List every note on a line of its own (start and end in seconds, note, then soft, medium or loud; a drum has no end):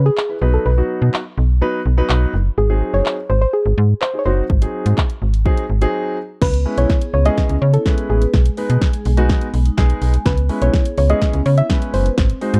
0.00 0.10 C#3 loud
0.06 0.55 G#4 medium
0.17 clap loud
0.29 0.35 E4 soft
0.29 0.36 B4 soft
0.41 0.58 B1 loud
0.41 0.70 F#3 medium
0.41 0.70 B3 medium
0.41 0.70 D#4 medium
0.41 0.71 B4 medium
0.54 0.65 A4 medium
0.66 0.82 B1 loud
0.66 2.30 B4 medium
0.77 1.18 F#3 medium
0.77 1.18 B3 medium
0.77 1.18 D#4 medium
0.77 1.18 F#4 medium
1.02 1.10 B2 medium
1.14 clap loud
1.38 1.62 B1 loud
1.61 1.79 F#3 medium
1.61 1.79 B3 medium
1.61 1.79 D#4 medium
1.61 1.79 B4 loud
1.86 2.02 B1 medium
1.97 2.32 F#3 medium
1.97 2.32 B3 medium
1.97 2.32 D#4 medium
1.97 2.32 B4 loud
2.10 2.26 B1 medium
2.10 clap loud
2.34 2.50 F#1 medium
2.58 2.82 G#1 loud
2.58 2.95 G#4 loud
2.69 3.16 F#3 medium
2.69 3.16 C4 medium
2.69 3.16 D#4 medium
2.69 3.16 G#4 medium
2.94 3.02 F#1 medium
2.94 3.31 C#5 loud
3.06 clap loud
3.30 3.46 G#1 loud
3.30 3.40 C5 loud
3.41 3.54 C5 loud
3.53 4.03 G#4 medium
3.66 3.74 G#1 medium
3.78 3.94 G#2 loud
4.01 4.19 C5 medium
4.01 clap loud
4.14 4.19 D#4 soft
4.14 4.20 G#4 soft
4.19 4.26 C#5 medium
4.25 4.42 F#1 medium
4.25 4.43 F#3 medium
4.25 4.43 C4 medium
4.25 4.43 D#4 medium
4.25 4.43 F#4 medium
4.25 5.90 C5 loud
4.50 4.66 G#1 loud
4.50 kick loud
4.61 5.02 F#3 medium
4.61 5.02 C4 medium
4.61 5.02 D#4 medium
4.61 5.02 G#4 medium
4.61 closed hi-hat medium
4.86 4.94 G#2 medium
4.86 closed hi-hat medium
4.98 kick loud
4.98 clap loud
5.10 closed hi-hat medium
5.22 5.46 G#1 medium
5.34 closed hi-hat medium
5.45 5.63 F#3 medium
5.45 5.63 C4 medium
5.45 5.63 D#4 medium
5.45 5.63 G#4 medium
5.45 kick loud
5.57 closed hi-hat medium
5.70 5.86 G#1 medium
5.81 6.16 F#3 medium
5.81 6.16 C4 medium
5.81 6.16 D#4 medium
5.81 6.16 G#4 loud
5.81 closed hi-hat medium
6.42 6.66 C#2 loud
6.42 6.51 B3 medium
6.42 6.79 B4 loud
6.42 kick loud
6.42 snare medium
6.42 crash medium
6.54 closed hi-hat medium
6.65 6.94 G#3 medium
6.65 6.75 B3 medium
6.65 6.94 C#4 medium
6.65 6.95 E4 medium
6.65 6.95 B4 medium
6.78 6.86 B1 medium
6.78 6.87 E4 medium
6.78 7.13 C#5 loud
6.78 closed hi-hat medium
6.90 6.99 B3 medium
6.90 kick loud
6.90 snare medium
7.01 7.11 G#4 medium
7.01 closed hi-hat medium
7.14 7.30 C#2 loud
7.14 7.23 B3 medium
7.14 7.25 C#5 medium
7.25 7.54 G#3 medium
7.25 7.54 C#4 medium
7.25 7.54 E4 medium
7.25 7.55 G#4 medium
7.25 7.35 B4 medium
7.25 7.63 D#5 loud
7.25 closed hi-hat medium
7.37 7.47 B3 medium
7.37 kick loud
7.37 snare medium
7.49 7.58 C#2 medium
7.49 7.59 C#4 medium
7.49 closed hi-hat medium
7.62 7.78 C#3 loud
7.62 7.71 B3 medium
7.62 7.74 C#5 medium
7.73 7.83 E4 medium
7.73 8.11 A4 medium
7.73 closed hi-hat medium
7.85 8.20 G#3 medium
7.85 7.95 B3 medium
7.85 8.20 C#4 medium
7.85 8.20 E4 medium
7.85 8.20 B4 medium
7.85 kick loud
7.85 snare medium
7.98 8.07 G#4 medium
7.98 closed hi-hat soft
8.10 8.26 A1 medium
8.10 8.19 B3 medium
8.10 9.50 G#4 medium
8.22 8.31 B4 medium
8.22 closed hi-hat medium
8.34 8.50 B1 loud
8.34 8.43 G#3 medium
8.34 kick loud
8.34 snare medium
8.45 closed hi-hat medium
8.57 8.86 G#3 medium
8.57 8.67 G#3 medium
8.57 8.86 B3 medium
8.57 8.86 D#4 medium
8.57 8.87 B4 medium
8.57 open hi-hat medium
8.70 8.78 B2 medium
8.70 8.79 D#4 medium
8.70 closed hi-hat medium
8.82 8.91 G#3 medium
8.82 kick loud
8.82 snare medium
8.93 9.03 G#4 medium
8.93 closed hi-hat medium
9.05 9.30 B1 medium
9.05 9.15 G#3 medium
9.05 open hi-hat medium
9.17 9.46 G#3 medium
9.17 9.46 B3 medium
9.17 9.46 D#4 medium
9.17 9.46 F#4 loud
9.17 9.27 G#5 medium
9.17 closed hi-hat medium
9.29 9.39 G#3 medium
9.29 kick loud
9.29 snare medium
9.41 9.51 B3 medium
9.41 closed hi-hat medium
9.54 9.70 B1 medium
9.54 9.63 G#3 medium
9.54 open hi-hat medium
9.65 9.75 D#4 medium
9.65 closed hi-hat medium
9.77 9.94 B1 medium
9.77 10.12 G#3 medium
9.77 9.87 G#3 medium
9.77 10.12 B3 medium
9.77 10.12 D#4 medium
9.77 10.12 G#4 loud
9.77 kick loud
9.77 snare medium
9.90 9.99 G#4 medium
9.90 closed hi-hat soft
10.02 10.18 B1 medium
10.02 10.11 G#3 medium
10.02 open hi-hat medium
10.14 10.23 G#5 medium
10.14 closed hi-hat medium
10.26 10.50 C#2 loud
10.26 10.35 B3 medium
10.26 10.63 B4 medium
10.26 kick loud
10.26 snare medium
10.38 closed hi-hat medium
10.49 10.78 G#3 medium
10.49 10.59 B3 medium
10.49 10.78 C#4 medium
10.49 10.78 E4 medium
10.49 10.78 B4 medium
10.49 open hi-hat medium
10.62 10.70 B1 medium
10.62 10.71 E4 medium
10.62 10.97 C#5 medium
10.62 closed hi-hat medium
10.74 10.83 B3 medium
10.74 kick loud
10.74 snare medium
10.85 10.95 G#4 medium
10.85 closed hi-hat medium
10.98 11.14 C#2 loud
10.98 11.07 B3 medium
10.98 11.10 C#5 medium
10.98 open hi-hat medium
11.09 11.38 G#3 medium
11.09 11.38 C#4 medium
11.09 11.38 E4 medium
11.09 11.39 G#4 medium
11.09 11.19 B4 medium
11.09 11.47 D#5 loud
11.09 closed hi-hat medium
11.21 11.31 B3 medium
11.21 kick loud
11.21 snare medium
11.33 11.42 C#2 medium
11.33 11.43 C#4 medium
11.33 closed hi-hat medium
11.46 11.62 C#3 loud
11.46 11.55 B3 medium
11.46 11.58 C#5 loud
11.46 open hi-hat medium
11.58 11.67 E4 medium
11.58 11.95 E5 loud
11.58 closed hi-hat medium
11.69 12.04 G#3 medium
11.69 11.79 B3 medium
11.69 12.04 C#4 medium
11.69 12.04 E4 medium
11.69 12.04 B4 medium
11.69 kick loud
11.69 snare medium
11.82 11.91 G#4 medium
11.82 closed hi-hat medium
11.94 12.10 F#1 medium
11.94 12.03 B3 medium
11.94 12.60 C5 medium
11.94 open hi-hat medium
12.06 12.15 B4 loud
12.06 closed hi-hat medium
12.18 12.34 G#1 loud
12.18 12.27 C4 medium
12.18 kick loud
12.18 snare medium
12.30 closed hi-hat medium
12.41 12.60 G#3 medium
12.41 12.51 C4 medium
12.41 12.60 D#4 medium
12.41 12.60 F#4 medium
12.41 12.60 C5 medium
12.41 open hi-hat medium
12.54 12.60 G#2 loud
12.54 12.60 F#4 medium
12.54 closed hi-hat medium